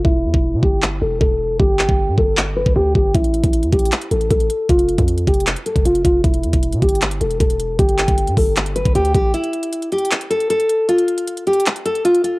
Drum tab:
HH |------------------------------------------------|------------------------------------------------|x--x--x--x--x--x--x-x-x-x--x--x--x--x--x--x-----|x--x--x--x--x--x--x-x-x-x--x--x--x--x--x--x-----|
CP |------------------------x-----------------------|------x-----------------x-----------------------|------------------------x-----------------------|------------------------x-----------------------|
BD |o--------o--------o-----------------o-----------|o--------o--------o--------------o--------o-----|o--------o--------o-----------------o-----------|o--------o--------o--------------o--------o-----|

HH |x--x--x--x--x--x--x-x-x-x--x--x--x--x--x--x-----|x--x--x--x--x--x--o-----x--x--x--x--x--x--x-----|x--x--x--x--x--x--x-x-x-x--x--x--x--x--x--x-----|x--x--x--x--x--x--x-x-x-x--x--x--x--x--x--x-----|
CP |------------------------x-----------------------|------x-----------------x-----------------------|------------------------x-----------------------|------------------------x-----------------------|
BD |o--------o--------o-----------------o-----------|o--------o--------o--------------o--------o-----|------------------------------------------------|------------------------------------------------|